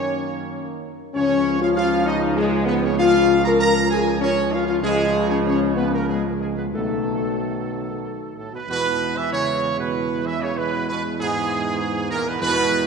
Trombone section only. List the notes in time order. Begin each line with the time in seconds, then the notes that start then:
Already playing: D#3 A#3
1.16 C#3 F3
4.82 C#3 F3
6.74 D#3 F#3
8.35 A2
8.52 B2
8.70 B2
9.16 E3
9.32 C#3
9.78 B2
10.24 E3
10.40 C#3
10.57 B2
10.90 B2
11.21 G#2
12.12 A#2
12.30 B2
12.44 B2